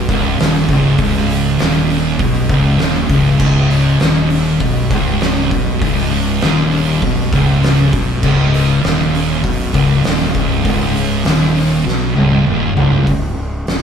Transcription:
0.08 0.37 C#1 medium
0.08 0.38 C#2 loud
0.08 kick loud
0.08 open hi-hat medium
0.39 0.67 D#1 medium
0.39 0.68 D#2 loud
0.39 snare loud
0.39 open hi-hat medium
0.55 snare soft
0.68 0.97 C#1 loud
0.68 0.97 C#2 loud
0.68 kick loud
0.68 open hi-hat medium
0.98 1.55 C#1 medium
0.98 1.58 C#2 loud
0.98 kick loud
0.98 open hi-hat medium
1.15 snare soft
1.29 open hi-hat medium
1.59 2.16 D#1 medium
1.59 2.18 D#2 loud
1.59 snare loud
1.59 open hi-hat medium
1.90 open hi-hat medium
2.19 2.48 B1 loud
2.19 2.49 B2 loud
2.19 kick loud
2.19 open hi-hat medium
2.49 2.78 C#1 loud
2.49 2.79 C#2 loud
2.49 kick loud
2.49 open hi-hat medium
2.79 3.09 D#1 medium
2.79 3.09 D#2 loud
2.79 snare loud
2.79 open hi-hat medium
3.09 3.38 C#1 medium
3.09 3.38 C#2 loud
3.09 kick loud
3.09 open hi-hat medium
3.39 3.96 C#1 loud
3.39 3.99 C#2 loud
3.39 kick loud
3.39 crash loud
3.71 open hi-hat medium
4.00 4.57 D#1 medium
4.00 4.59 D#2 loud
4.00 snare loud
4.00 open hi-hat medium
4.30 open hi-hat medium
4.60 4.89 B1 medium
4.60 4.90 B2 loud
4.60 kick loud
4.60 open hi-hat medium
4.90 5.47 C#1 loud
4.90 5.50 C#2 medium
4.90 kick loud
4.90 open hi-hat medium
5.21 snare loud
5.21 open hi-hat medium
5.51 5.79 B1 medium
5.51 5.80 B2 loud
5.51 kick loud
5.51 open hi-hat medium
5.81 6.38 C#1 medium
5.81 6.41 C#2 loud
5.81 kick loud
5.81 open hi-hat medium
5.98 snare soft
6.12 open hi-hat medium
6.41 6.98 D#1 loud
6.41 7.01 D#2 loud
6.41 snare loud
6.41 open hi-hat medium
6.72 open hi-hat medium
7.02 7.30 B1 loud
7.02 7.31 B2 loud
7.02 kick medium
7.02 open hi-hat medium
7.32 7.89 C#1 loud
7.32 7.91 C#2 medium
7.32 kick loud
7.32 open hi-hat medium
7.63 snare loud
7.63 open hi-hat medium
7.92 8.21 B1 medium
7.92 8.22 B2 loud
7.92 kick loud
7.92 open hi-hat medium
8.22 8.80 C#1 loud
8.22 8.81 C#2 loud
8.22 kick loud
8.22 crash loud
8.54 open hi-hat medium
8.82 9.40 D#1 loud
8.82 9.42 D#2 loud
8.82 snare loud
8.82 open hi-hat medium
9.15 open hi-hat medium
9.43 9.72 B1 loud
9.43 9.73 B2 loud
9.43 kick loud
9.43 open hi-hat medium
9.74 10.02 C#1 medium
9.74 10.03 C#2 medium
9.74 kick loud
9.74 open hi-hat medium
10.04 10.33 D#1 loud
10.04 10.33 D#2 loud
10.04 snare loud
10.04 open hi-hat medium
10.22 snare soft
10.34 10.63 C#1 medium
10.34 10.63 C#2 loud
10.34 kick loud
10.34 open hi-hat medium
10.64 11.21 C#1 loud
10.64 11.24 C#2 loud
10.64 kick loud
10.64 open hi-hat medium
10.95 open hi-hat medium
11.25 11.82 D#1 medium
11.25 11.85 D#2 loud
11.25 snare loud
11.25 open hi-hat medium
11.56 open hi-hat medium
11.85 12.15 B1 loud
11.85 12.15 B2 loud
11.85 snare medium
12.15 12.45 C#1 medium
12.15 12.45 C#2 medium
12.15 high tom medium
12.31 high tom medium
12.46 12.75 D#1 medium
12.46 12.75 D#2 loud
12.46 mid tom medium
12.75 13.06 C#1 medium
12.75 13.06 C#2 loud
12.75 floor tom loud
12.92 floor tom medium
13.07 13.64 C#1 medium
13.07 kick loud
13.07 open hi-hat medium
13.67 13.82 D#1 medium
13.67 snare loud
13.67 open hi-hat soft

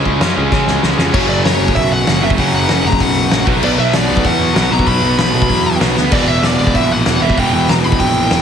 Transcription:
0.00 0.19 C#3 loud
0.00 0.19 G#3 loud
0.00 0.20 C#4 loud
0.06 0.16 C#2 medium
0.06 kick medium
0.20 0.32 F#2 medium
0.20 0.36 C#3 medium
0.20 0.36 G#3 medium
0.20 0.35 C#4 medium
0.20 snare loud
0.20 crash medium
0.36 0.47 C#2 medium
0.36 0.50 C#3 medium
0.36 0.50 G#3 medium
0.36 0.51 C#4 loud
0.52 0.81 C#3 medium
0.52 0.62 C#3 medium
0.52 0.82 G#3 loud
0.52 0.82 C#4 loud
0.52 kick loud
0.52 snare medium
0.67 0.78 C#2 medium
0.67 snare medium
0.82 0.93 C#2 loud
0.82 0.98 C#3 medium
0.82 0.98 G#3 medium
0.82 0.97 C#4 medium
0.82 snare medium
0.98 1.09 F2 medium
0.98 1.13 C#3 medium
0.98 1.13 G#3 medium
0.98 1.13 C#4 medium
0.98 snare medium
1.13 1.27 F#1 medium
1.13 2.21 F#2 medium
1.13 2.22 C#3 loud
1.13 2.21 F#3 loud
1.13 1.29 C#5 medium
1.13 kick loud
1.13 crash loud
1.29 1.42 F#1 medium
1.29 1.44 D5 medium
1.44 1.58 F#1 medium
1.44 1.74 C#5 medium
1.44 snare loud
1.44 open hi-hat medium
1.60 1.73 F#1 loud
1.68 kick medium
1.75 2.02 B1 loud
1.75 1.92 E5 loud
1.75 kick medium
1.75 open hi-hat medium
1.92 2.21 F#5 loud
2.07 2.20 F#1 loud
2.07 snare loud
2.07 open hi-hat medium
2.22 2.36 F#1 loud
2.22 2.35 F#2 medium
2.22 2.37 C#3 medium
2.22 2.38 F#3 medium
2.22 2.29 E5 medium
2.30 kick loud
2.37 2.51 F#1 loud
2.37 3.45 F#2 loud
2.37 3.46 C#3 loud
2.37 3.47 F#3 loud
2.37 2.54 F#5 loud
2.37 kick loud
2.37 open hi-hat medium
2.53 2.67 F#1 medium
2.53 2.87 F#5 loud
2.69 2.82 F#1 medium
2.69 snare loud
2.69 open hi-hat medium
2.85 2.98 F#1 loud
2.85 3.02 A#5 medium
2.92 kick medium
3.00 3.26 B1 loud
3.00 3.44 F#5 loud
3.00 kick loud
3.00 open hi-hat medium
3.31 3.44 A#1 loud
3.31 snare loud
3.31 open hi-hat medium
3.46 3.60 B1 loud
3.46 4.53 B2 loud
3.46 4.54 F#3 loud
3.46 4.56 B3 loud
3.46 kick loud
3.63 3.76 B1 loud
3.63 3.69 D5 loud
3.63 crash loud
3.79 3.91 B1 medium
3.79 3.95 E5 loud
3.93 4.07 B1 medium
3.93 4.26 D5 medium
3.93 snare loud
3.93 open hi-hat medium
4.10 4.23 B1 loud
4.17 kick medium
4.25 4.51 E2 loud
4.25 4.55 F#5 loud
4.25 kick loud
4.25 open hi-hat medium
4.54 4.69 B1 loud
4.54 4.68 B2 medium
4.54 4.69 F#3 medium
4.54 4.71 B3 medium
4.54 4.72 F#5 loud
4.54 snare loud
4.54 open hi-hat medium
4.69 4.85 B1 loud
4.69 5.79 B2 loud
4.69 5.79 F#3 loud
4.69 5.82 B3 loud
4.69 4.87 A#5 medium
4.79 kick medium
4.87 5.00 B1 loud
4.87 5.16 B5 loud
4.87 kick loud
4.87 open hi-hat medium
5.03 5.16 B1 medium
5.18 5.31 B1 medium
5.18 5.77 B5 medium
5.18 snare loud
5.18 open hi-hat medium
5.34 5.47 B1 loud
5.42 kick medium
5.50 5.76 E2 medium
5.50 kick medium
5.50 open hi-hat medium
5.80 5.94 B1 loud
5.80 5.95 B2 medium
5.80 5.96 F#3 medium
5.80 8.42 B3 medium
5.80 snare loud
5.80 open hi-hat medium
5.97 6.10 D2 medium
5.97 snare medium
6.11 6.25 E1 loud
6.11 7.20 E2 medium
6.11 7.21 B2 medium
6.11 7.19 E3 loud
6.11 6.28 D5 medium
6.11 kick loud
6.11 open hi-hat medium
6.11 crash loud
6.28 6.41 E1 medium
6.28 6.45 E5 loud
6.43 6.57 E1 medium
6.43 6.75 D5 medium
6.43 snare loud
6.43 open hi-hat medium
6.59 6.72 E1 loud
6.67 kick medium
6.75 7.01 A#1 medium
6.75 6.92 E5 loud
6.75 kick medium
6.75 open hi-hat medium
6.92 7.22 F#5 loud
7.06 7.19 E1 loud
7.06 snare loud
7.06 open hi-hat medium
7.21 7.34 E1 loud
7.21 7.34 E2 medium
7.21 7.36 B2 medium
7.21 7.36 E3 medium
7.21 7.38 E5 medium
7.30 kick medium
7.36 7.50 E1 loud
7.36 8.42 E2 loud
7.36 8.42 B2 loud
7.36 8.42 E3 loud
7.36 7.52 G5 loud
7.36 kick loud
7.36 open hi-hat medium
7.53 7.66 E1 medium
7.53 7.69 G5 loud
7.69 7.81 E1 medium
7.69 7.74 A#5 medium
7.69 snare loud
7.69 open hi-hat medium
7.84 7.97 E1 medium
7.84 8.00 B5 medium
7.92 kick loud
7.99 8.26 A#1 loud
7.99 8.42 G5 loud
7.99 kick loud
7.99 open hi-hat medium
8.31 8.42 E1 loud
8.31 snare loud
8.31 open hi-hat medium

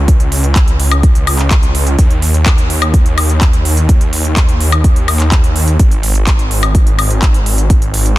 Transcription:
0.00 1.96 C#2 medium
0.08 kick loud
0.08 closed hi-hat medium
0.20 closed hi-hat soft
0.32 open hi-hat loud
0.44 closed hi-hat soft
0.56 kick loud
0.56 clap loud
0.56 closed hi-hat medium
0.68 closed hi-hat soft
0.80 open hi-hat loud
0.92 closed hi-hat soft
0.92 high woodblock medium
1.03 kick loud
1.03 closed hi-hat medium
1.15 closed hi-hat soft
1.27 open hi-hat loud
1.27 high woodblock medium
1.39 clap soft
1.39 closed hi-hat soft
1.51 kick loud
1.51 clap loud
1.51 closed hi-hat medium
1.63 closed hi-hat soft
1.75 open hi-hat loud
1.87 closed hi-hat soft
1.99 kick loud
1.99 closed hi-hat loud
2.11 closed hi-hat soft
2.22 open hi-hat loud
2.34 closed hi-hat soft
2.46 kick loud
2.46 clap loud
2.46 closed hi-hat medium
2.58 closed hi-hat soft
2.70 open hi-hat medium
2.82 closed hi-hat soft
2.82 high woodblock medium
2.94 kick loud
2.94 closed hi-hat medium
3.06 closed hi-hat soft
3.18 open hi-hat loud
3.18 high woodblock medium
3.30 closed hi-hat soft
3.41 kick loud
3.41 clap loud
3.41 closed hi-hat medium
3.53 closed hi-hat soft
3.65 open hi-hat loud
3.77 closed hi-hat soft
3.89 kick loud
3.89 closed hi-hat loud
4.01 closed hi-hat soft
4.13 open hi-hat loud
4.25 closed hi-hat soft
4.37 kick loud
4.37 clap loud
4.37 closed hi-hat medium
4.49 closed hi-hat soft
4.61 open hi-hat medium
4.72 closed hi-hat soft
4.72 high woodblock medium
4.84 kick loud
4.84 closed hi-hat loud
4.96 closed hi-hat soft
5.08 open hi-hat loud
5.08 high woodblock medium
5.20 clap soft
5.20 closed hi-hat soft
5.32 kick loud
5.32 clap loud
5.32 closed hi-hat medium
5.44 closed hi-hat soft
5.56 open hi-hat medium
5.68 closed hi-hat soft
5.80 8.18 G#1 medium
5.80 kick loud
5.80 closed hi-hat loud
5.91 closed hi-hat soft
6.03 open hi-hat loud
6.15 closed hi-hat soft
6.27 kick loud
6.27 clap loud
6.27 closed hi-hat medium
6.39 closed hi-hat soft
6.51 open hi-hat medium
6.63 closed hi-hat soft
6.63 high woodblock medium
6.75 kick loud
6.75 closed hi-hat loud
6.87 closed hi-hat soft
6.99 open hi-hat loud
6.99 high woodblock medium
7.10 closed hi-hat soft
7.22 kick loud
7.22 clap loud
7.22 closed hi-hat medium
7.34 closed hi-hat soft
7.46 open hi-hat medium
7.58 closed hi-hat soft
7.70 kick loud
7.70 closed hi-hat loud
7.82 closed hi-hat soft
7.94 open hi-hat loud
8.06 closed hi-hat soft

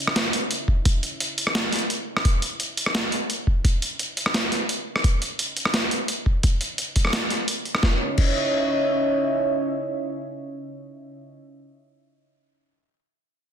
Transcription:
0.00 7.82 C#4 medium
0.00 7.83 C#5 medium
0.00 7.83 D#5 medium
0.00 7.83 E5 medium
0.07 cross-stick medium
0.16 snare loud
0.16 closed hi-hat medium
0.33 closed hi-hat medium
0.51 closed hi-hat medium
0.68 kick medium
0.85 kick loud
0.85 closed hi-hat medium
1.03 closed hi-hat medium
1.20 closed hi-hat medium
1.38 closed hi-hat medium
1.47 cross-stick medium
1.55 snare loud
1.55 closed hi-hat medium
1.72 snare soft
1.72 closed hi-hat medium
1.76 closed hi-hat soft
1.79 closed hi-hat soft
1.90 closed hi-hat medium
2.17 cross-stick medium
2.25 kick loud
2.25 closed hi-hat medium
2.42 closed hi-hat medium
2.60 closed hi-hat medium
2.77 closed hi-hat medium
2.86 cross-stick medium
2.95 snare loud
2.95 closed hi-hat medium
3.12 closed hi-hat medium
3.30 closed hi-hat medium
3.47 kick medium
3.65 kick loud
3.65 closed hi-hat medium
3.82 closed hi-hat medium
3.99 closed hi-hat medium
4.17 closed hi-hat medium
4.26 cross-stick medium
4.34 snare loud
4.34 closed hi-hat medium
4.52 snare soft
4.52 closed hi-hat medium
4.69 closed hi-hat medium
4.96 cross-stick medium
5.04 kick loud
5.04 closed hi-hat medium
5.22 closed hi-hat medium
5.39 closed hi-hat medium
5.57 closed hi-hat medium
5.65 cross-stick medium
5.74 snare loud
5.74 closed hi-hat medium
5.91 closed hi-hat medium
6.08 closed hi-hat medium
6.26 kick medium
6.43 kick loud
6.43 closed hi-hat medium
6.61 closed hi-hat medium
6.78 closed hi-hat medium
6.96 kick medium
6.96 closed hi-hat medium
7.05 cross-stick medium
7.07 cross-stick medium
7.10 cross-stick soft
7.13 cross-stick soft
7.13 snare loud
7.13 closed hi-hat medium
7.16 cross-stick soft
7.19 cross-stick soft
7.30 snare soft
7.30 closed hi-hat medium
7.48 closed hi-hat medium
7.65 closed hi-hat soft
7.75 cross-stick medium
7.83 11.38 C#4 medium
7.83 kick loud
7.83 snare medium
7.88 11.38 C#5 medium
7.93 11.38 D#5 medium
7.99 11.38 E5 medium
8.18 kick loud
8.18 crash medium

